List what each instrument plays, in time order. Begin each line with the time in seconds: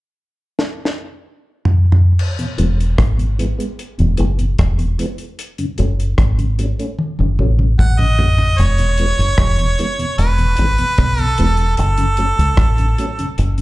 0.59 snare
0.85 snare
1.65 floor tom
1.92 floor tom
2.19 crash
2.39 tonewheel organ E2 B2, closed hi-hat
2.58 fingered electric bass E1, tonewheel organ E3 G#3 B3, closed hi-hat
2.80 closed hi-hat
2.98 fingered electric bass G#1, kick, cross-stick, closed hi-hat
3.18 tonewheel organ E2 B2, closed hi-hat
3.39 tonewheel organ E3 G#3 B3, closed hi-hat
3.58 tonewheel organ G#3 B3, closed hi-hat
3.79 closed hi-hat
3.98 fingered electric bass E1, tonewheel organ E2 B2, closed hi-hat
4.17 fingered electric bass F#1, tonewheel organ E3 G#3 B3, closed hi-hat
4.38 tonewheel organ E2 B2, closed hi-hat
4.59 fingered electric bass E1, kick, cross-stick, closed hi-hat
4.78 tonewheel organ E2 B2, closed hi-hat
4.98 tonewheel organ E3 G#3 B3, closed hi-hat
5.18 closed hi-hat
5.39 closed hi-hat
5.58 tonewheel organ F#2 C#3, closed hi-hat
5.78 fingered electric bass F#1, tonewheel organ F#3 A3 C#4, closed hi-hat
6.00 closed hi-hat
6.18 fingered electric bass G#1, kick, cross-stick, closed hi-hat
6.38 tonewheel organ F#2 C#3, closed hi-hat
6.59 tonewheel organ F#3 A3 C#4, closed hi-hat
6.79 tonewheel organ A3 C#4, closed hi-hat
6.99 high tom
7.19 fingered electric bass F#1, tonewheel organ F#2 C#3, high tom
7.39 fingered electric bass A1, tonewheel organ F#3 A3 C#4, mid tom
7.59 tonewheel organ F#2 C#3, mid tom
7.79 fingered electric bass A1, harmonica F#5, kick, mid tom
7.99 tonewheel organ F#2 C#3, harmonica D#5, mid tom
8.19 tonewheel organ F#3 A3 C#4, floor tom
8.38 floor tom
8.58 fingered electric bass E1, harmonica C#5, closed hi-hat
8.78 tonewheel organ E2 B2, closed hi-hat
8.98 tonewheel organ E3 G#3 B3, closed hi-hat
9.19 fingered electric bass F#1, closed hi-hat
9.38 fingered electric bass E1, kick, cross-stick, closed hi-hat
9.59 tonewheel organ E2 B2, closed hi-hat
9.79 tonewheel organ E3 G#3 B3, closed hi-hat
9.99 tonewheel organ E2 B2, closed hi-hat
10.18 fingered electric bass E1, harmonica B4, closed hi-hat
10.38 tonewheel organ E2 B2, closed hi-hat
10.57 fingered electric bass G#1, tonewheel organ E3 G#3 B3, closed hi-hat
10.78 tonewheel organ E2 B2, closed hi-hat
10.98 fingered electric bass B1, kick, cross-stick, closed hi-hat
11.18 tonewheel organ E2 B2, closed hi-hat
11.22 harmonica A4
11.38 fingered electric bass E1, tonewheel organ E3 G#3 B3, closed hi-hat
11.57 closed hi-hat
11.77 fingered electric bass F#1, harmonica A4, closed hi-hat
11.98 tonewheel organ F#2 C#3, closed hi-hat
12.17 tonewheel organ F#3 A3 C#4, closed hi-hat
12.39 fingered electric bass C#2, closed hi-hat
12.57 fingered electric bass A1, kick, cross-stick, closed hi-hat
12.78 tonewheel organ F#2 C#3, closed hi-hat
12.98 tonewheel organ F#3 A3 C#4, closed hi-hat
13.19 tonewheel organ F#2 C#3, closed hi-hat
13.38 fingered electric bass F#1, closed hi-hat
13.58 tonewheel organ F#2 C#3, closed hi-hat